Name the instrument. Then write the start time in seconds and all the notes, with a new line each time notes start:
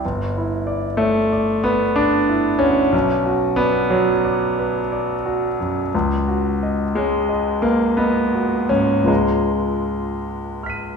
grand piano
0.05 G1
0.37 E4
0.67 D5
0.97 A3 C#5
1.32 D5
1.64 B3 B4
1.96 D4 D5
2.29 E4
2.59 D2 C#4
2.92 B1
3.26 F#4
3.56 B3 D5
3.90 F#3 C#5
4.25 D5
4.59 B4
4.92 D5
5.26 F#4
5.60 F#2
5.95 C#2
6.28 F#4
6.63 D#5
6.95 G#3 C#5
7.29 D#5
7.62 A#3 B4
7.97 B3 D#5
8.34 F#4
8.69 G#2 C#4
9.04 C#2 G#3 F4 B4 D#5
9.08 A#5
10.63 F6 B6
10.70 D#7